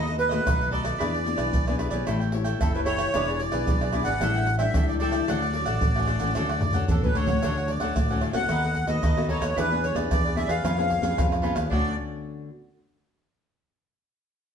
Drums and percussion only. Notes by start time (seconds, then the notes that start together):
0.07 pandeiro, maracas
0.19 pandeiro
0.31 pandeiro, tamborim, maracas
0.47 pandeiro, tamborim, maracas, surdo
0.61 pandeiro, maracas
0.72 pandeiro
0.85 pandeiro, tamborim, maracas
1.00 pandeiro, tamborim, maracas, surdo
1.14 pandeiro, maracas
1.26 pandeiro, maracas
1.38 pandeiro, tamborim, maracas
1.53 pandeiro, maracas, surdo
1.67 pandeiro, tamborim, maracas
1.79 pandeiro, tamborim, maracas
1.91 pandeiro, maracas
2.07 pandeiro, tamborim, maracas, surdo
2.21 pandeiro, maracas
2.32 pandeiro
2.45 pandeiro, tamborim, maracas
2.61 pandeiro, tamborim, maracas, surdo
2.74 pandeiro, maracas
2.86 pandeiro, maracas
2.98 pandeiro, tamborim, maracas
3.14 pandeiro, tamborim, maracas, surdo
3.28 pandeiro, maracas
3.40 pandeiro
3.52 pandeiro, tamborim, maracas
3.67 pandeiro, maracas, surdo
3.81 pandeiro, tamborim, maracas
3.93 pandeiro, tamborim, maracas
4.05 pandeiro, maracas
4.21 pandeiro, tamborim, maracas, surdo
4.35 pandeiro, maracas
4.47 pandeiro
4.59 pandeiro, tamborim, maracas
4.74 pandeiro, tamborim, maracas, surdo
4.88 pandeiro, maracas
5.00 pandeiro
5.12 pandeiro, tamborim, maracas
5.28 pandeiro, tamborim, maracas, surdo
5.42 pandeiro, maracas
5.54 pandeiro
5.66 pandeiro, tamborim, maracas
5.81 pandeiro, maracas, surdo
5.96 pandeiro, tamborim, maracas
6.08 pandeiro, tamborim, maracas
6.19 pandeiro, maracas
6.35 pandeiro, tamborim, maracas, surdo
6.49 pandeiro, tamborim, maracas
6.61 surdo, pandeiro
6.73 surdo, pandeiro, maracas
6.88 surdo, pandeiro, maracas
7.04 pandeiro, maracas, surdo
7.15 pandeiro, surdo
7.27 pandeiro, maracas, surdo
7.43 pandeiro, tamborim, maracas, surdo
7.57 pandeiro, maracas
7.68 pandeiro
7.80 pandeiro, tamborim, maracas, surdo
7.96 pandeiro, tamborim, maracas, surdo
8.10 pandeiro, maracas
8.21 pandeiro, tamborim
8.33 pandeiro, tamborim, maracas, surdo
8.49 pandeiro, tamborim, maracas, surdo
8.63 pandeiro, maracas
8.75 pandeiro, surdo
8.87 pandeiro, maracas, surdo
9.03 pandeiro, tamborim, maracas, surdo
9.17 pandeiro, tamborim, maracas
9.29 pandeiro
9.42 pandeiro, tamborim, maracas, surdo
9.58 pandeiro, tamborim, maracas, surdo
9.72 pandeiro, maracas
9.84 pandeiro, maracas
9.96 pandeiro, tamborim, maracas, surdo
10.11 pandeiro, tamborim, maracas, surdo
10.26 pandeiro, maracas
10.37 pandeiro, tamborim, maracas
10.49 pandeiro, tamborim, maracas, surdo
10.65 pandeiro, tamborim, maracas, surdo
10.79 pandeiro, maracas
10.90 pandeiro, surdo
11.03 pandeiro, maracas, surdo
11.18 pandeiro, tamborim, maracas, surdo
11.32 pandeiro, tamborim, maracas
11.44 pandeiro
11.56 pandeiro, tamborim, maracas, surdo
11.71 surdo